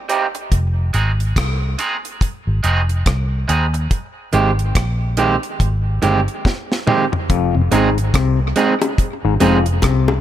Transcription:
0.09 G3 C4 D#4 G4, closed hi-hat
0.35 muted clean electric guitar stroke, closed hi-hat
0.52 F1, kick, closed hi-hat
0.93 G#1 G#3 C4 D#4 G#4, closed hi-hat
1.20 closed hi-hat
1.36 C2, kick, cross-stick, closed hi-hat
1.78 G#3 C4 D#4 G#4, closed hi-hat
2.05 closed hi-hat
2.21 kick, closed hi-hat
2.47 G#1
2.63 F1 G#3 C4 D#4 G#4, closed hi-hat
2.89 closed hi-hat
3.06 C2, kick, cross-stick, closed hi-hat
3.48 D#2 G#3 C4 D#4 G#4, closed hi-hat
3.74 muted clean electric guitar stroke, closed hi-hat
3.91 kick, closed hi-hat
4.33 G#1 D#3 G#3 C4 G4, closed hi-hat
4.59 closed hi-hat
4.75 A#1, kick, cross-stick, closed hi-hat
5.17 D#3 G#3 C4 G4, closed hi-hat
5.43 closed hi-hat
5.60 G#1, kick, closed hi-hat
6.02 G1 D#3 G#3 C4 G4, closed hi-hat
6.28 closed hi-hat
6.45 kick, snare
6.72 snare
6.87 D#3 G#3 C4 G4, mid tom
7.12 muted clean electric guitar stroke, floor tom
7.30 F1 F2, kick, closed hi-hat
7.55 F2 C3
7.71 G#1 G#2 G#3 C4 D#4 G#4, closed hi-hat, high bongo
7.98 closed hi-hat
8.14 C2 C3, kick, cross-stick, closed hi-hat
8.56 G#3 C4 D#4 G#4, closed hi-hat
8.82 closed hi-hat, high bongo
8.98 kick, closed hi-hat
9.25 G#1 G#2
9.40 F1 F2 G#3 C4 D#4 G#4, closed hi-hat, high bongo
9.66 closed hi-hat
9.82 C2 C3, kick, cross-stick, closed hi-hat, high bongo
10.08 high bongo

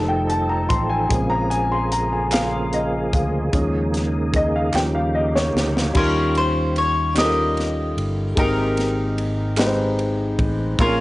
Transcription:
Already playing: F1 D#3 F3 G3 A3 D#4 A4 A5
0.09 G5
0.30 A5, closed hi-hat
0.49 A#5
0.69 A1 C6, kick, closed hi-hat
0.89 G#5
1.09 A#1 C#3 G#3 A#3 C4 G#4, kick, closed hi-hat
1.30 A#5
1.50 G#5, closed hi-hat
1.72 C6
1.92 A#5, closed hi-hat
2.13 G#5
2.32 F5, snare, clap, closed hi-hat
2.73 D#5, closed hi-hat
3.13 D2 F5, kick, closed hi-hat
3.52 D#2 F3 G#3 A#3 C#4 D#4, kick, closed hi-hat
3.94 snare, closed hi-hat
4.34 D#5, kick, closed hi-hat
4.56 F5
4.74 D#2 F3 G3 C#4 G4 G5, snare, clap
4.95 F5
5.15 D#5
5.36 C#5, snare
5.55 D2, snare
5.77 snare
5.93 D#2 D#3 G3 C#4 D#4 F4 G4 A#4 C6, kick, crash
6.35 C5, ride
6.76 C#5, ride
7.15 G3 C#4 D#4 F4 G4 A4 D#5, snare, clap, ride
7.19 A#4
7.24 A#4
7.57 snare, ride
7.97 G1, ride
8.36 G#1 G#2 G#3 A#3 D#4 G4 A#4, kick, ride
8.43 C4
8.77 snare, ride
9.18 ride
9.57 G#3 C4 D#4 G4 B4, snare, clap, ride
9.66 C5
9.99 ride
10.39 A1, kick, ride
10.79 A#1 A#2 A#3 C4 C#4 F4 G#4 A#4 C6, kick, ride
10.86 C#4

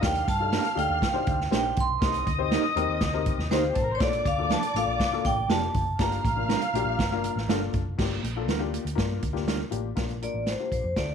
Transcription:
0.01 D#2 D4 D#4 G4 A#4 F5 G5 F6, kick, snare, closed hi-hat, muted conga
0.15 closed hi-hat, muted conga
0.27 G2 A5, kick, closed hi-hat, high conga
0.40 D4 D#4 G4 A4
0.53 A#3 D4 G4 A#4, snare, closed hi-hat, high conga
0.65 closed hi-hat
0.75 D2 D4 D#4 G4 A4 G5, closed hi-hat, high conga
0.89 D#2
1.02 kick, snare, closed hi-hat, muted conga, low conga
1.13 D4 D#4 G4 C5, muted picked electric bass stroke
1.27 D2, kick, closed hi-hat, high conga
1.41 snare
1.51 A#1 A#3 D4 D#4 G4 A#4 C5, snare, closed hi-hat, muted conga, high conga
1.56 G5
1.76 B1 C6, kick, closed hi-hat, high conga, low conga
2.01 C2 C4 D#4 G4 A#4 D#5 D#6, kick, snare, closed hi-hat
2.14 closed hi-hat, muted conga
2.27 D2, kick, closed hi-hat, high conga
2.38 C4 D#4 G4 C5
2.51 A#3 D#4 G4 A#4, snare, closed hi-hat, muted conga, high conga
2.76 D#2 C4 D#4 G4 A#4, closed hi-hat, high conga
2.88 D#2
3.01 D2, kick, snare, closed hi-hat, low conga
3.13 C4 D#4 G4 A#4, muted conga
3.26 kick, closed hi-hat, high conga
3.38 D#2, snare
3.50 D2 A#3 C4 D#4 G4 A#4 C5 D#5, snare, closed hi-hat, high conga
3.58 F4 F5
3.68 G4 G5
3.75 A1 A4 A5, kick, closed hi-hat, high conga, low conga
3.83 A#4 A#5
3.92 C5 C#5 C6
4.00 A#1 A#3 D4 F4 A4 D5 D6, kick, snare, closed hi-hat, muted conga
4.13 closed hi-hat, muted conga
4.25 D2 F5, kick, closed hi-hat, high conga
4.38 A#3 D4 F4 A4
4.50 F3 A#3 D4 A4 A5, snare, closed hi-hat, high conga
4.63 closed hi-hat, muted conga
4.74 A1 A#3 D4 F4 A4 F5, closed hi-hat, high conga
4.87 A#1
5.00 kick, snare, closed hi-hat, muted conga, low conga
5.12 A#3 D4 F4 A4, muted picked electric bass stroke
5.25 A1 G5, kick, closed hi-hat, high conga
5.48 F1 F3 A#3 D4 F4 G4 A4 A5, snare, closed hi-hat, muted conga, high conga
5.64 muted conga
5.74 F#1, kick, closed hi-hat, high conga, low conga
5.98 G1 A#3 D4 F4 G4 F5 A#5 F6, kick, snare, closed hi-hat, muted conga
6.12 closed hi-hat, muted conga
6.25 A1, kick, closed hi-hat, high conga
6.36 A#3 D4 F4 A#4
6.49 G3 D4 F4 A#4, snare, closed hi-hat, muted conga, high conga
6.61 closed hi-hat, muted conga
6.74 A#1 A#3 D4 F4 G4, closed hi-hat, high conga
6.85 A#1
6.98 G1, kick, snare, closed hi-hat, low conga
7.11 A#3 D4 F4 A#4, muted conga
7.24 closed hi-hat, high conga
7.36 A1, snare
7.48 G1 G3 A#3 D4 F4 A4 A#4, snare, closed hi-hat, muted conga, high conga
7.73 F#1, kick, closed hi-hat, high conga, low conga
7.98 G1 A#3 D4 F4 G4, kick, snare, crash, muted conga, low conga
8.11 muted conga
8.23 A#1, closed hi-hat, high conga
8.36 A#3 D4 F4 A4
8.48 D2 G3 D4 F4 A#4, snare, closed hi-hat, muted conga, high conga
8.59 A#3 D4 F4 G4, muted conga
8.74 closed hi-hat, high conga
8.85 D2, closed hi-hat
8.95 G2 A#3 D4 F4 A#4, kick, snare, closed hi-hat, muted conga, low conga
9.12 muted conga
9.22 D2, kick, closed hi-hat, high conga
9.33 A#3 D4 F4 G4, snare
9.47 G3 D4 F4 A#4, snare, closed hi-hat, muted conga, high conga
9.60 muted conga
9.71 A1 A#3 D4 F4 G4, closed hi-hat, low conga
9.95 A#1 A#3 D4 F4 A#4, kick, snare, closed hi-hat
10.09 closed hi-hat
10.22 A#3 D4 F4 A#4 D5, closed hi-hat
10.34 A1
10.46 C5, snare, closed hi-hat
10.59 A#3 D4 F4 G4
10.72 A#1 C5, kick, closed hi-hat
10.84 F2
10.96 D2 A3 D4 F4 A4 D5, kick, snare, closed hi-hat

